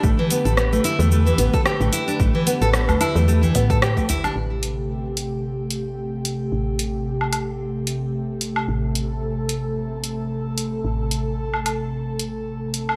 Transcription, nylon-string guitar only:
X:1
M:4/4
L:1/16
Q:"Swing 16ths" 1/4=111
K:Am
V:1 name="Nylon-string guitar"
A, E, B, A B, A, E A, A, E, B, A G A, E D | A, E, B, A B, A, E A, A, E, B, A G A, E D | z16 | z16 |
z16 | z16 |]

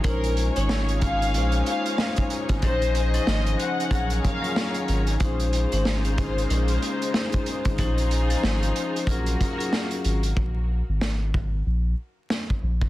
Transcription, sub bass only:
X:1
M:4/4
L:1/16
Q:"Swing 16ths" 1/4=93
K:Bbm
V:1 name="Sub bass" clef=bass
B,,,3 A,,,4- A,,, B,,,2 z4 z A,,, | B,,,4 A,,,2 z2 B,,,2 z4 A,,,2 | B,,,3 A,,,4- A,,, B,,,2 z4 z A,,, | B,,,4 A,,,2 z2 B,,,2 z4 A,,,2 |
[K:Abdor] B,,,3 A,,,4- A,,, B,,,2 z4 B,,,2 |]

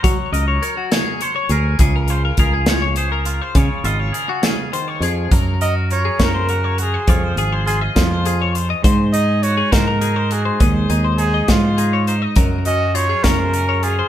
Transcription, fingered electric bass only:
X:1
M:6/8
L:1/16
Q:3/8=68
K:Db
V:1 name="Fingered electric bass" clef=bass
G, z D,,2 z6 =D,,2 | D,,4 D,,8 | D, z A,,,2 z6 F,,2 | G,,6 G,,6 |
F,,2 A,,,4 F,,6 | A,,6 A,,6 | E,,2 E,,4 A,,6 | G,,6 G,,6 |]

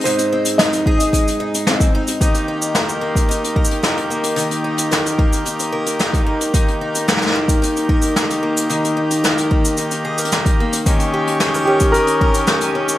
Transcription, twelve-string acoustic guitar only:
X:1
M:4/4
L:1/16
Q:1/4=111
K:Eb
V:1 name="Twelve-string acoustic guitar"
[A,,A,CEA]2 C2 E2 A2 A,2 E2 C2 E2 | E,2 E2 B2 B,2 E2 B2 E2 B,2 | E,2 E2 B2 B,2 E2 B2 E2 B,2 | E,2 E2 B2 B,2 E2 B2 E2 B,2 |
E,2 E2 B2 B,2 E2 A B E2 B,2 | E,2 G2 A B _D2 G2 B2 G2 D2 |]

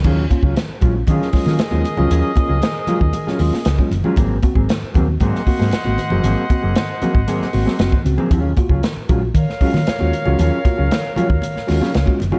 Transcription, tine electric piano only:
X:1
M:4/4
L:1/16
Q:1/4=116
K:Ebdor
V:1 name="Tine electric piano"
E, z [DF] z E, z [G,A,DF] [DF] E, z [G,A,DF] [DF] z [G,A,DF] E, [G,A,DF] | E, z [DF] z E, z [G,A,DF] [DF] E, z [G,A,DF] [DF] z [G,A,DF] E, [G,A,DF] | [A,,E,] z [CG] z [A,,E,] z [B,CG] [CG] [A,,E,] z [B,CG] [CG] z [B,CG] [A,,E,] [B,CG] | [A,,E,] z [CG] z [A,,E,] z [B,CG] [CG] [A,,E,] z [B,CG] [CG] [CG] [A,,E,] [CG] z |
E, z [FG] z E, z [A,DFG] [FG] E, z [A,DFG] [FG] z [A,DFG] E, [A,DFG] | E, z [FG] z E, z [A,DFG] [FG] E, z [A,DFG] [FG] z [A,DFG] E, [A,DFG] |]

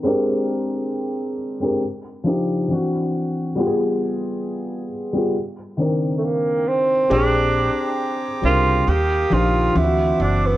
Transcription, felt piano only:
X:1
M:4/4
L:1/16
Q:"Swing 16ths" 1/4=68
K:Bbmix
V:1 name="Felt piano"
[A,CDGB]6 z [A,CDGB] z2 [F,DEG]2 [=E,CD^F]3 z | [G,=B,FGA]6 z [G,B,FA] z2 [E,CD_B]4- [E,CDB] z | [CDGA]4- [CDGA] z [G,CDB]2 z2 [F,DEG]2 [=E,CDF^F]3 z |]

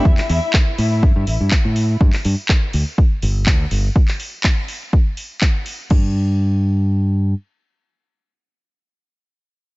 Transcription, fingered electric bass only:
X:1
M:4/4
L:1/16
Q:"Swing 16ths" 1/4=123
K:Ador
V:1 name="Fingered electric bass" clef=bass
E,, z E,, z3 A,,2 G,, G,, A,,, G,, z A,,2 z | G,, z G,, z3 D,, z3 G,,,2 D,, z G,,, z | z16 | G,,12 z4 |
z16 |]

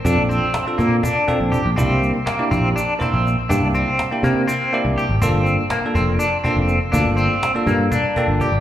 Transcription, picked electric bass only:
X:1
M:7/8
L:1/16
Q:1/4=122
K:Cmix
V:1 name="Picked electric bass" clef=bass
F,, B,,,2 z3 B,,2 z3 B,,, z B,,, | C,, C,,2 z3 B,,,2 z3 B,,,2 z | G,, C,,2 z3 C,2 z3 C,, z _A,,, | G,,, G,,,2 z3 F,,,2 z3 F,,,2 z |
D,, G,,,2 z3 G,,2 z3 G,,, z G,,, |]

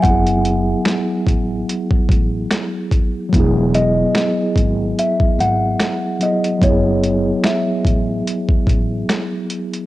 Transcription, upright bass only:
X:1
M:4/4
L:1/8
Q:"Swing 16ths" 1/4=73
K:F#dor
V:1 name="Upright bass" clef=bass
F,,,2 z A,,, z A,,, z2 | E,,,2 z G,,, z G,,, z2 | F,,,2 z A,,, z A,,, z2 |]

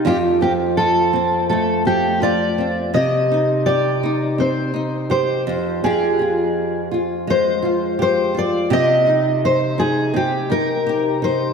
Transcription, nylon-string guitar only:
X:1
M:4/4
L:1/8
Q:1/4=83
K:Cm
V:1 name="Nylon-string guitar"
[F,,F] C F C =A, C F C | [C,G] E G E C E G F,, | [F,,G] F2 F A, F G F | [C,G] E2 E C E G E |]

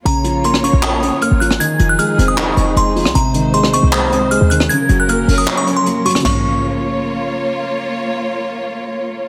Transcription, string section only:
X:1
M:4/4
L:1/8
Q:1/4=155
K:Bbm
V:1 name="String section"
[B,Fd]8 | [F,EA]8 | [A,Ec]8 | [G,DB]8 |
[B,Fd]8- | [B,Fd]8 |]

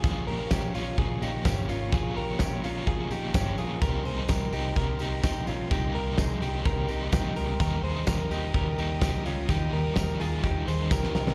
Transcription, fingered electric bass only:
X:1
M:4/4
L:1/8
Q:1/4=127
K:Bbdor
V:1 name="Fingered electric bass" clef=bass
B,,, B,,, B,,, B,,, B,,, B,,, G,,, A,,, | B,,, B,,, B,,, B,,, B,,, B,,, G,,, B,,, | C,, C,, C,, C,, C,, C,, B,,, B,,, | C,, C,, C,, C,, C,, C,, B,,, D,, |
E,, E,, z E,, E,, E,, C,, D,, | E,, E,, E,, E,, E,, E,, z C,, |]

